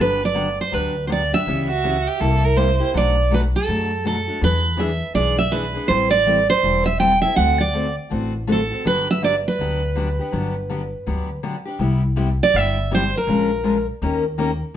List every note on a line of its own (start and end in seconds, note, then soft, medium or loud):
0.00 0.58 G1 medium
0.00 0.19 D3 medium
0.00 0.20 F#3 medium
0.00 0.20 B3 medium
0.00 0.20 D4 medium
0.00 0.20 G4 medium
0.00 0.22 B4 medium
0.25 0.61 D5 medium
0.34 0.46 D3 medium
0.34 0.47 F#3 medium
0.34 0.47 B3 medium
0.34 0.47 D4 medium
0.34 0.47 G4 medium
0.61 0.74 C5 medium
0.72 1.32 D2 medium
0.72 0.94 D3 medium
0.72 0.94 F#3 medium
0.72 0.94 B3 medium
0.72 0.94 D4 medium
0.72 0.94 G4 medium
0.72 1.07 B4 medium
1.07 1.20 D3 medium
1.07 1.21 F#3 medium
1.07 1.21 B3 medium
1.07 1.21 D4 medium
1.07 1.21 G4 medium
1.07 1.10 C5 medium
1.12 1.34 D5 medium
1.33 1.47 B3 soft
1.33 1.47 D4 soft
1.33 1.46 G4 soft
1.33 2.77 E5 medium
1.46 2.06 C#2 medium
1.46 1.68 C#3 medium
1.46 1.68 E3 medium
1.46 1.69 B3 medium
1.46 1.69 C#4 medium
1.46 1.69 G4 medium
1.69 2.09 F#4 medium
1.84 1.95 C#3 medium
1.84 1.95 E3 medium
1.84 1.95 B3 medium
1.84 1.95 C#4 medium
1.84 1.95 G4 medium
2.08 2.22 G4 medium
2.19 2.80 C2 medium
2.19 2.41 C3 medium
2.19 2.42 G3 medium
2.19 2.42 A#3 medium
2.19 2.42 E4 medium
2.19 2.42 G4 medium
2.19 2.46 A4 medium
2.44 2.58 A#4 medium
2.57 2.68 C3 medium
2.57 2.68 G3 medium
2.57 2.68 A#3 medium
2.57 2.69 E4 medium
2.57 2.69 G4 medium
2.57 2.87 C5 medium
2.80 2.94 A#3 soft
2.80 2.94 E4 soft
2.80 2.93 G4 soft
2.94 3.53 B1 medium
2.94 3.15 B2 soft
2.94 3.15 F#3 medium
2.94 3.15 A3 medium
2.94 3.15 D4 medium
2.94 3.16 F#4 medium
2.94 3.34 D5 medium
3.30 3.42 B2 medium
3.30 3.42 F#3 medium
3.30 3.42 A3 medium
3.30 3.43 D4 medium
3.30 3.43 F#4 medium
3.30 3.40 B4 medium
3.56 4.06 A4 medium
3.68 4.27 F#2 medium
3.68 3.89 B2 medium
3.68 3.90 F#3 medium
3.68 3.90 A3 medium
3.68 3.90 D4 medium
3.68 3.90 F#4 medium
4.05 4.16 B2 medium
4.05 4.16 F#3 medium
4.05 4.17 A3 medium
4.05 4.17 D4 medium
4.05 4.17 F#4 medium
4.05 4.40 A4 medium
4.28 4.41 A3 soft
4.28 4.40 D4 soft
4.28 4.41 F#4 medium
4.41 5.01 E2 medium
4.41 4.63 E3 medium
4.41 4.63 B3 medium
4.41 4.63 D4 medium
4.41 4.63 G#4 medium
4.41 4.81 B4 medium
4.77 4.89 E3 medium
4.77 4.89 B3 medium
4.77 4.90 D4 medium
4.77 4.90 G#4 medium
4.77 5.15 E5 medium
5.14 5.74 B1 medium
5.14 5.37 E3 medium
5.14 5.37 B3 medium
5.14 5.37 D4 medium
5.14 5.37 G#4 medium
5.14 5.37 D5 medium
5.39 5.51 E5 medium
5.52 5.63 E3 medium
5.52 5.64 B3 medium
5.52 5.64 D4 medium
5.52 5.64 G#4 medium
5.52 5.90 B4 medium
5.74 5.89 B3 soft
5.74 5.89 D4 medium
5.74 5.88 G#4 soft
5.88 6.48 A1 medium
5.88 6.11 E3 medium
5.88 6.11 G3 medium
5.88 6.11 C4 medium
5.88 6.11 E4 medium
5.88 6.11 A4 medium
5.88 6.10 C5 medium
6.11 6.49 D5 medium
6.26 6.37 E3 medium
6.26 6.38 G3 medium
6.26 6.38 C4 medium
6.26 6.38 E4 medium
6.26 6.38 A4 medium
6.50 6.85 C5 medium
6.63 7.22 E1 medium
6.63 6.84 E3 medium
6.63 6.84 G3 medium
6.63 6.85 C4 medium
6.63 6.85 E4 medium
6.63 6.85 A4 medium
6.86 6.99 E5 medium
7.00 7.11 E3 medium
7.00 7.11 G3 medium
7.00 7.11 C4 medium
7.00 7.12 E4 medium
7.00 7.12 A4 medium
7.00 7.21 G5 medium
7.22 7.37 C4 soft
7.22 7.37 E4 soft
7.22 7.36 A4 medium
7.22 7.36 E5 medium
7.36 7.96 D2 medium
7.36 7.58 D3 soft
7.36 7.58 A3 medium
7.36 7.59 C4 medium
7.36 7.59 F#4 medium
7.36 7.59 A4 medium
7.36 7.60 F#5 medium
7.61 7.95 D5 medium
7.73 7.85 D3 medium
7.73 7.86 A3 medium
7.73 7.85 C4 medium
7.73 7.86 F#4 medium
7.73 7.86 A4 medium
8.10 8.70 A1 medium
8.10 8.32 D3 medium
8.10 8.32 A3 medium
8.10 8.32 C4 medium
8.10 8.33 F#4 medium
8.10 8.33 A4 medium
8.47 8.59 D3 medium
8.47 8.59 A3 medium
8.47 8.59 C4 medium
8.47 8.59 F#4 medium
8.47 8.60 A4 medium
8.52 8.87 A4 medium
8.70 8.85 C4 soft
8.70 8.84 F#4 soft
8.70 8.84 A4 medium
8.85 9.44 G1 medium
8.85 9.06 D3 medium
8.85 9.06 F#3 medium
8.85 9.06 B3 medium
8.85 9.07 D4 medium
8.85 9.07 G4 medium
8.85 9.07 B4 medium
9.11 9.23 E5 medium
9.22 9.33 D3 medium
9.22 9.33 F#3 medium
9.22 9.34 B3 medium
9.22 9.34 D4 medium
9.22 9.34 G4 medium
9.22 9.35 D5 medium
9.48 11.41 B4 medium
9.59 10.18 D2 medium
9.59 9.81 D3 medium
9.59 9.81 F#3 medium
9.59 9.81 B3 medium
9.59 9.81 D4 medium
9.59 9.81 G4 medium
9.95 10.07 D3 medium
9.95 10.07 F#3 medium
9.95 10.07 B3 medium
9.95 10.07 D4 medium
9.95 10.08 G4 medium
10.19 10.32 B3 soft
10.19 10.32 D4 soft
10.19 10.32 G4 medium
10.32 10.92 G1 medium
10.32 10.54 D3 medium
10.32 10.54 F#3 medium
10.32 10.54 B3 medium
10.32 10.54 D4 medium
10.32 10.54 G4 medium
10.70 10.81 D3 medium
10.70 10.81 F#3 medium
10.70 10.81 B3 medium
10.70 10.81 D4 medium
10.70 10.81 G4 medium
11.07 11.36 D2 medium
11.07 11.28 D3 medium
11.07 11.28 F#3 medium
11.07 11.28 B3 medium
11.07 11.28 D4 medium
11.07 11.29 G4 medium
11.43 11.55 D3 medium
11.43 11.55 F#3 medium
11.43 11.55 B3 medium
11.43 11.55 D4 medium
11.43 11.55 G4 medium
11.65 11.79 B3 soft
11.65 11.80 D4 soft
11.65 11.79 G4 soft
11.79 12.39 C2 medium
11.79 12.01 C3 medium
11.79 12.01 G3 medium
11.79 12.02 B3 medium
11.79 12.02 E4 medium
11.79 12.02 G4 medium
12.16 12.28 C3 medium
12.16 12.28 G3 medium
12.16 12.28 B3 medium
12.16 12.28 E4 medium
12.16 12.29 G4 medium
12.43 12.56 D5 medium
12.54 13.13 G1 medium
12.54 12.76 C3 medium
12.54 12.76 G3 medium
12.54 12.76 B3 medium
12.54 12.76 E4 medium
12.54 12.76 G4 medium
12.54 12.92 E5 medium
12.91 13.02 C3 medium
12.91 13.03 G3 medium
12.91 13.03 B3 medium
12.91 13.03 E4 medium
12.91 13.03 G4 medium
12.91 13.16 C5 medium
13.17 13.86 A#4 medium
13.27 13.86 A#1 medium
13.27 13.49 F3 medium
13.27 13.49 G#3 medium
13.27 13.49 C#4 medium
13.27 13.50 F4 medium
13.27 13.50 A#4 medium
13.64 13.76 F3 medium
13.64 13.76 G#3 medium
13.64 13.76 C#4 medium
13.64 13.76 F4 medium
13.64 13.76 A#4 medium
14.02 14.61 D#2 medium
14.02 14.23 D#3 medium
14.02 14.23 A#3 medium
14.02 14.23 C#4 medium
14.02 14.23 G4 medium
14.02 14.24 A#4 medium
14.38 14.49 D#3 medium
14.38 14.50 A#3 medium
14.38 14.50 C#4 medium
14.38 14.50 G4 medium
14.38 14.50 A#4 loud